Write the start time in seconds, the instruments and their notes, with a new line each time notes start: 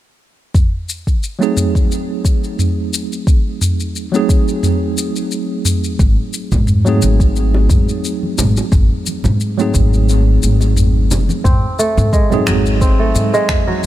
0.55 kick, mid tom, shaker
0.89 shaker
1.07 kick, shaker
1.23 shaker
1.39 tine electric piano F#3 A3 C4 D#4, shaker
1.43 tine electric piano G#4
1.57 mid tom, shaker
1.75 kick, shaker
1.92 shaker
2.25 kick, shaker
2.44 shaker
2.59 mid tom, shaker
2.94 shaker
3.12 shaker
3.27 kick, shaker
3.61 mid tom, shaker
3.80 shaker
3.96 shaker
4.12 tine electric piano F#3 A3 C4 D#4, shaker
4.16 tine electric piano G#4
4.29 kick, shaker
4.48 shaker
4.63 mid tom, shaker
4.98 shaker
5.16 shaker
5.31 shaker
5.65 mid tom, shaker
5.84 shaker
5.99 upright bass G#1, kick, shaker
6.33 shaker
6.52 upright bass G#2, kick, high bongo, low conga, shaker
6.67 mid tom, shaker
6.85 tine electric piano F#3 A3 C4 D#4 G#4, shaker
7.02 upright bass G#1, high conga, shaker
7.20 kick, shaker
7.36 shaker
7.54 high bongo
7.70 upright bass G#2, kick, mid tom, shaker
7.89 shaker
8.04 shaker
8.23 high conga
8.38 upright bass G#1, high bongo, low conga, shaker
8.57 high bongo, shaker
8.72 upright bass G#1, kick, mid tom, shaker
9.06 high conga, shaker
9.24 upright bass G#2, high bongo, low conga, shaker
9.40 shaker
9.58 tine electric piano F#3 A3 C4 D#4 G#4, shaker
9.74 upright bass G#1, kick, mid tom, high conga, shaker
9.93 shaker
10.09 shaker
10.43 upright bass G#1, shaker
10.60 high bongo, shaker
10.77 mid tom, shaker
11.11 upright bass F#1, high bongo, low conga, shaker
11.29 high conga, shaker
11.44 upright bass G#1, kora C4, kick, mid tom, shaker
11.79 kora A3, shaker
11.97 upright bass G#2, low conga, shaker
12.13 kora G#3, kick, shaker
12.30 tine electric piano F#3 C4 D#4 G#4, low conga, shaker
12.46 upright bass G#1, kora F#3, finger snap, mid tom, high bongo, high conga, shaker
12.66 shaker
12.81 kora C4, kick, shaker
12.99 kora A3
13.15 upright bass G#2, shaker
13.34 kora G#3, shaker
13.49 finger snap, kick, mid tom, shaker
13.67 kora F#3, high conga